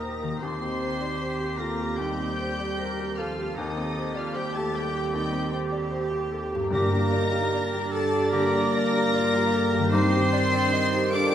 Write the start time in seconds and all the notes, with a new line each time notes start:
Already playing: D#2 A#2 A#3 C4 D#4 G4 A#4 D#5 A#5 D#6 A#6
0.02 C5
0.22 D#3 A#4
0.27 D#4
0.32 G4
0.37 C4 C5
0.41 D#2 C4 D#4 G4 C6 D6 C7
0.62 G4
0.82 C5
1.01 D5
1.20 G4 C5
1.40 G4
1.58 A#3 F4 A4 A#4 A#5 A#6
1.78 G4
1.96 D#2 G3 D#4 G4 G5 G6
2.18 C4
2.38 G4 C5
2.59 D5
2.79 A#4 C5
3.00 G4
3.17 F3 F4 A4 F5 F6
3.39 G4
3.55 D#2 D#3 C4 D#4 G4 D#5 D6 D#6
3.77 C4
3.97 C5
4.15 F3 F4 D5 F5 F6
4.34 G3 G4 C5 G5 G6
4.54 A3 G4 A4 A5 A6
4.73 G3 G4 A4 G5 G6
4.94 G4
5.13 D#2 G3 D#4 G4 G5 G6
5.32 C4
5.52 G4 C5
5.71 D5
5.91 C5
6.11 G4
6.32 A4
6.52 G2 G4
6.59 A#3
6.64 G4
6.71 G2 A#3 D4 G4 A#4 D5 A#5 D6 A#6
6.92 G4
7.11 D#4 D5
7.32 G4
7.53 D4 D5
7.74 G4
7.92 A4 A5 A6
8.13 G4
8.30 D3 A#3 G4 A#4 A#5 D6 A#6
8.53 G4
8.74 D5
8.94 G4
9.12 F4 D5
9.34 G4
9.52 G4 A4
9.73 G2 G4
9.79 D#3
9.84 G4
9.88 D#3 D#4 C5
9.92 G2 C4 D#4 G4 C6 D6 C7
10.13 G4
10.32 D4 D5
10.53 D5
10.72 D#4 D#5
10.93 G4
11.12 D4 F4 A4 D5 D6 D7